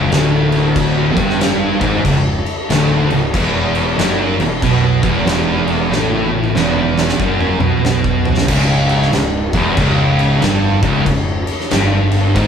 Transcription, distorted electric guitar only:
Already playing: C#2
0.11 D2
1.16 G2
1.81 G#2
2.05 C#2
2.70 D2
3.11 C#2
3.33 E2
3.98 F#2
4.40 E2
4.63 B2
5.03 E2
5.26 E2
5.91 A2
6.55 E2
7.19 F#2
7.60 B2
7.84 B2
8.47 C#2
9.12 C#2
9.54 E2
9.78 C#2
10.42 G2
10.82 C#2
11.05 C#2
11.71 G2
12.35 G#2

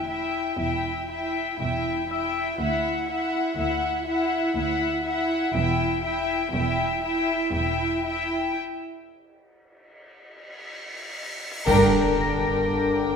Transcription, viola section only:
0.09 E4
0.59 E4
1.09 E4
1.59 E4
2.08 E4
2.58 E4
3.09 E4
3.57 E4
4.06 E4
4.56 E4
5.05 E4
5.54 E4
6.03 E4
6.53 E4
7.03 E4
7.53 E4
8.05 E4
11.67 D4

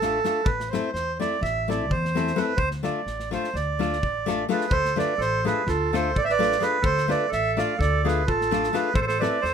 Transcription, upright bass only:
Already playing: A1
0.45 A1
0.94 E2
1.41 A1
1.90 E2
2.57 D2
3.06 A1
3.54 D2
4.03 A1
4.70 D2
5.18 A1
5.67 D2
6.15 A1
6.83 D2
7.32 A1
7.79 D2
8.27 A1
8.94 A1
9.43 E2

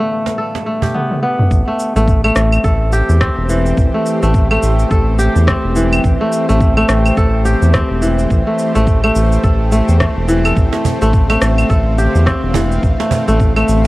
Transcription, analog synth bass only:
1.51 A1
1.96 A1
2.36 A1
2.64 A1
3.09 E2
3.38 E1
3.78 A1
4.23 A1
4.63 A1
4.91 A1
5.36 E2
5.64 E1
6.04 A1
6.50 A1
6.89 A1
7.17 A1
7.62 E2
7.90 E1
8.30 A1
8.76 A1
9.15 A1
9.44 A1
9.89 E2
10.17 E1
10.57 A1
11.02 A1
11.42 A1
11.70 A1
12.15 E2
12.43 E1
12.83 A1
13.28 A1
13.68 A1

